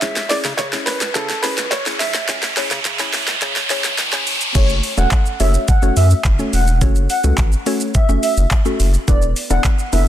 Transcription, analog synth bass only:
0.02 C#2
0.45 C#3
0.59 C#3
1.01 C#2
1.16 C#3
1.58 C#2
2.00 B1
2.29 C#2
2.71 C#3
2.85 C#3
3.28 C#2
3.42 C#3
3.84 C#2
3.98 C#2
4.27 E1
4.55 F#1
4.97 E1
5.40 F#1
5.82 F#1
5.97 F#2
6.25 F#1
6.53 E1
6.81 F#1
7.24 C#2
7.38 A1
8.09 F#1
8.37 F#1
8.80 F#1
9.08 E1
9.50 E1
9.93 F#1

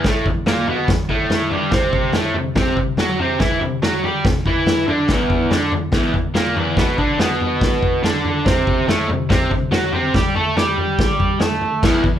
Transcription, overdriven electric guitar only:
0.06 A2 A3
0.27 E2
0.47 A#2 A#3
0.68 B2 B3
0.89 E2
1.09 A2 A3
1.51 G2 G3
1.71 C3 C4
2.14 A2 A3
2.36 C3
2.56 C3 C4
2.78 C3
2.99 F#3 F#4
3.19 C3 C4
3.40 E3 E4
3.61 C3
3.82 F#3 F#4
4.04 G3 G4
4.25 C3
4.47 E3 E4
4.88 D3 D4
5.09 E2 E3
5.51 D3 D4
5.73 E2
5.93 E2 E3
6.14 E2
6.34 A#2 A#3
6.55 E2 E3
6.77 B2 B3
6.98 D3 D4
7.19 B2 B3
8.03 D3 D4
8.46 C3 C4
8.88 A2 A3
9.10 C3
9.29 C3 C4
9.51 C3
9.71 F#3 F#4
9.93 C3 C4
10.14 G3 G4
10.36 A3 A4
10.57 G3 G4
11.41 A3 A4
11.83 E2 E3
12.04 E2

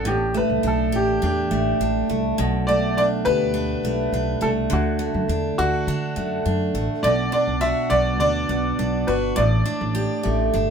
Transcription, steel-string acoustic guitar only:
Already playing: B3 D4 F#4
0.05 A2
0.34 A3
0.63 D4
0.92 G4
1.22 D4
1.51 A3
1.81 D4
2.10 A3
2.38 B2
2.69 A3
2.98 D4
3.26 G4
3.54 D4
3.85 A3
4.14 D4
4.41 A3
4.70 D3
4.99 A3
5.29 D4
5.59 F#4
5.88 D4
6.16 A3
6.46 D4
6.75 A3
7.04 B2
7.32 D4
7.61 F#4
7.90 B3
8.20 D4
8.49 B3
8.79 D4
9.08 F#4
9.36 A2
9.66 D4
9.95 G4
10.23 A3
10.54 D4

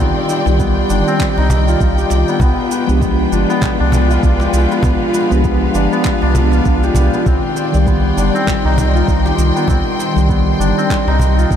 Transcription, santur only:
Already playing: D#4 F4 G4
0.00 C4
0.29 C5
0.59 B3
0.90 D4
1.07 C4
1.38 D#4
1.68 F4
1.98 G4
2.28 B3
2.41 B3
2.72 B4
3.02 B3
3.32 D4
3.50 B3
3.80 D4
4.10 F4
4.41 G4
4.71 B3
4.84 B3
5.15 B4
5.44 B3
5.75 D4
5.92 B3
6.22 D4
6.53 F4
6.83 G4
7.14 B3
7.27 C4
7.56 C5
7.87 B3
8.17 D4
8.35 C4
8.65 D#4
8.95 F4
9.25 G4
9.56 B3
9.69 C4
9.99 C5
10.29 B3
10.60 D4
10.78 C4
11.08 D#4
11.38 F4

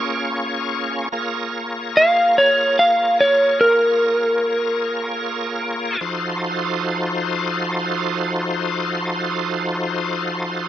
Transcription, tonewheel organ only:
Already playing: A#3 C#4 F4 G#4 C#5
1.12 A#3 F4 G#4 A#4 C#5
6.01 F3 D#4 F#4 A4 C5

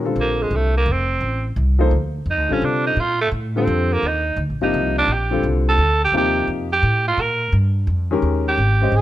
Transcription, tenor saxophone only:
0.20 A#3
0.42 G#3
0.55 A3
0.77 A#3
0.92 C4
2.30 D#4
2.52 C#4
2.65 D4
2.86 D#4
3.00 F4
3.21 A3
3.57 C4
3.93 A#3
4.07 D#4
4.63 D#4
4.98 D4
5.13 G4
5.68 A4
6.04 G4
6.17 G4
6.72 G4
7.08 F4
7.21 A#4
8.48 G4
8.96 G#4

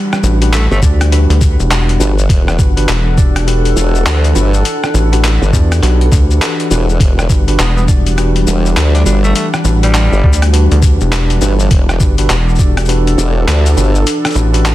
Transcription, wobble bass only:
0.71 G1
2.00 G1
2.29 E1
3.76 E1
4.06 D2
4.36 G1
5.42 G1
6.71 E1
7.00 E1
8.47 E1
8.76 D2
9.06 G1
10.12 G1
11.41 G1
11.71 E1
13.18 E1
13.47 D2
13.77 G1

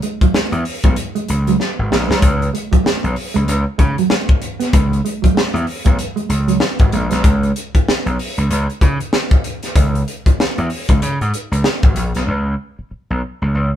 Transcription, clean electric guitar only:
0.03 G#3
0.21 F#3
0.34 G#3
0.54 muted clean electric guitar stroke
0.85 G#3
1.15 G#3
1.29 muted clean electric guitar stroke
1.48 F#3
1.59 muted clean electric guitar stroke
1.91 G#3
2.08 G#3
2.40 muted clean electric guitar stroke
2.54 G#3
2.72 F#3
2.84 G#3
3.04 muted clean electric guitar stroke
3.34 G#3
3.48 muted clean electric guitar stroke
3.78 G#3
3.99 F#3
4.11 G#3
4.41 muted clean electric guitar stroke
4.60 B3
4.92 muted clean electric guitar stroke
5.05 G#3
5.22 F#3
5.35 G#3
5.55 muted clean electric guitar stroke
5.85 G#3
6.16 G#3
6.29 muted clean electric guitar stroke
6.48 F#3
6.62 muted clean electric guitar stroke
6.93 G#3
7.11 G#3

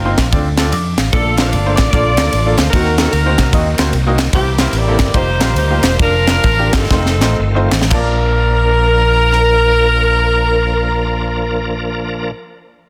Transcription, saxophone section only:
Already playing: A#3 C4 D#4 F4
1.13 D4 F4 A4
1.37 A#4
1.50 D5
1.75 D5
1.91 F4 A4 D5
2.56 C5
2.70 F#4 A#4
2.97 A4
3.13 F#4 A#4
4.34 A#3 E4 G4
4.61 A#4
4.74 G4 A#4 D5
5.14 D#4 G4 C5
5.56 D#4 G4 C5
6.01 D4 F4 A#4
6.74 C4 D#4 A4
7.92 A#4

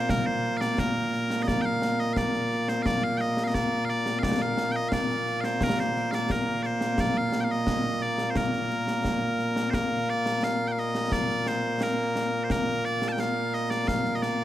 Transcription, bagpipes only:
Already playing: A#2 A#3
0.10 A#4
0.26 C5
0.57 D5 F5
0.79 A#4
1.42 D#5
1.48 D5
1.62 F5 G5
2.00 D#5
2.13 F5
2.18 D5
2.69 C5
2.83 D5 F5
3.04 F5
3.17 D#5 G5
3.44 D#5 F5
3.55 D5
3.85 F5
3.90 D5
4.19 F5
4.23 D5
4.42 F5
4.72 G5
4.76 D#5
4.89 F5
4.93 D5
5.41 C5 F5
5.63 A#4
5.80 C5
6.11 D5 F5
6.31 A#4
6.63 C5 D5
7.00 D5
7.18 F5
7.40 F5 G5
7.51 D#5
8.02 D5
8.30 C5
8.37 A#4
9.70 A#4 C5
10.10 D5
10.44 F5
10.68 G5
10.72 F5
10.79 D#5
11.13 D5
11.48 C5
11.83 A#4
12.44 C5
12.51 A#4
12.85 D5
13.08 G5 A5
13.20 F5
13.54 D#5
13.70 D5
13.88 F5
14.15 D#5
14.23 D5

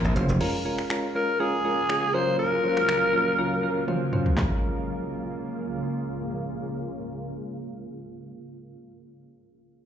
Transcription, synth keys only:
0.15 F3 A#3 C#4 C5
0.40 G#3 C#4 F4 A#4
0.65 G#3 C#4 F4 A#4
0.90 G#3 C#4 F4 A#4
1.15 G#3 C#4 F4 A#4
1.40 G#3 C#4 F4 A#4
1.65 G#3 C#4 F4 A#4
1.89 G#3 C#4 F4 G#4
2.14 F#3 C#4 F4 A#4
2.64 F#3 C#4 F4 C5
2.88 F#3 C#4 F4 A#4
3.13 F#3 C#4 F4 A#4
3.38 F#3 C#4 F4 A#4
3.63 F#3 C#4 F4 A#4
3.88 F#3 C#4 F4 C5
4.12 F#3 C#4 F4 C5
4.35 G#3 C#4 F4
4.39 A#4

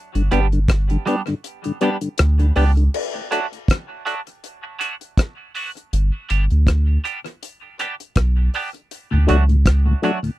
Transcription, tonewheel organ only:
0.15 G2 D3
0.31 G3 B3 D4
0.53 G2 D3
0.91 G2 D3
1.07 G3 B3 D4
1.28 G2 D3
1.65 G2 D3
1.81 G3 B3 D4
2.01 G2 D3
2.39 G2 D3
2.56 G3 B3 D4
2.77 G2 D3
3.15 D2 A2
3.31 F#3 A3 D4
3.52 D2 A2
3.89 D2 A2
4.06 F#3 A3 D4
4.27 D2 A2
4.65 D2 A2
4.81 F#3 A3 D4
5.54 F#3 A3 D4
6.13 G2 D3
6.30 G3 B3 D4
6.87 G2 D3
7.04 G3 B3 D4
7.62 G2 D3
7.78 G3 B3 D4
8.37 G2 D3
8.53 G3 B3 D4
8.74 G2 D3
9.11 D2 A2
9.27 F#3 A3 D4
9.48 D2 A2
9.85 D2 A2
10.02 F#3 A3 D4
10.23 D2 A2

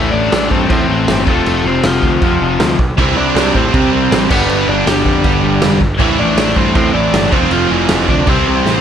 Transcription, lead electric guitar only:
Already playing: E3 E4
0.11 D4 D5
0.51 C4 C5
0.69 C4 C5
1.28 A3 A4
1.48 A3 A4
1.68 C4 C5
1.85 F3 F4
2.98 E3 E4
3.17 D4 D5
3.56 C4 C5
3.74 C4 C5
4.31 B3 B4
4.49 B3 B4
4.69 D4 D5
4.87 G3 G4
6.01 E3 E4
6.19 D4 D5
6.39 D4 D5
6.57 C4 C5
6.76 C4 C5
6.94 D4 D5
7.32 C4 C5
7.52 F3 F4
7.71 E3 E4
8.10 D4 D5
8.29 C4 C5

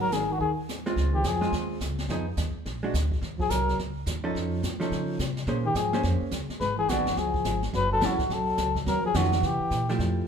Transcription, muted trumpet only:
0.01 A#4
0.13 G#4
0.32 F#4
0.41 G#4
1.14 G4
1.27 G#4
3.41 G#4
3.50 A#4
5.66 G4
5.76 G#4
6.60 B4
6.79 G#4
6.89 F#4
7.18 G#4
7.76 B4
7.92 A4
8.05 F#4
8.33 A4
8.88 A#4
9.06 G#4
9.16 F#4
9.46 G4

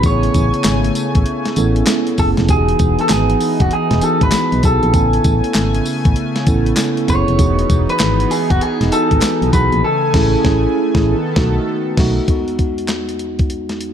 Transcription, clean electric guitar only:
0.06 C#5
2.19 A4
2.50 G#4
3.01 A4
3.11 G#4
3.62 F#4
3.73 G#4
4.04 A4
4.23 B4
4.65 A4
7.10 C#5
7.90 B4
8.31 G#4
8.51 F#4
8.62 G#4
8.93 A4
9.53 B4
9.84 A4

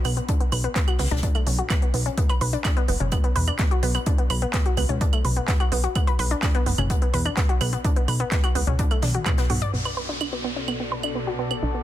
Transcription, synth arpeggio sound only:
0.05 B3
0.17 B3
0.29 D4
0.40 B3
0.52 B4
0.64 B3
0.76 B3
0.88 F#4
0.99 B3
1.11 D4
1.23 D4
1.35 A3
1.47 C#4
1.59 F#4
1.70 B3
1.82 B3
1.94 B3
2.06 C#4
2.18 B3
2.29 B4
2.41 B4
2.53 D4
2.65 D4
2.77 B3
2.88 B3
3.00 C#4
3.12 B3
3.24 B3
3.36 B4
3.48 D4
3.59 B3
3.71 F#4
3.83 B3
3.95 B3
4.06 D4
4.18 B3
4.30 B4
4.42 B3
4.54 B3
4.66 F#4
4.77 B3
4.89 C#4
5.01 D4
5.13 A3
5.25 B4
5.37 B3
5.48 B3
5.60 F#4
5.72 B3
5.84 F#4
5.95 B3
6.07 B4
6.19 B4
6.31 D4
6.43 D4
6.55 B3
6.66 B3
6.78 C#4
6.90 B3
7.02 B3
7.14 B4
7.25 D4
7.37 B3
7.49 F#4
7.61 B3
7.73 B3
7.84 D4
7.96 B3
8.08 B4
8.20 B3
8.32 B3
8.44 F#4
8.55 B3
8.67 C#4
8.79 D4
8.91 A3
9.03 D4
9.15 F#4
9.26 B3
9.38 B3
9.50 F#4
9.62 D5
9.73 B3
9.85 B4
9.97 B4
10.09 D4
10.21 D4
10.33 B3
10.44 B3
10.56 C#4
10.68 B3
10.80 B3
10.92 B4
11.04 D4
11.15 B3
11.27 F#4
11.39 B3
11.51 B3
11.63 D4
11.74 B3

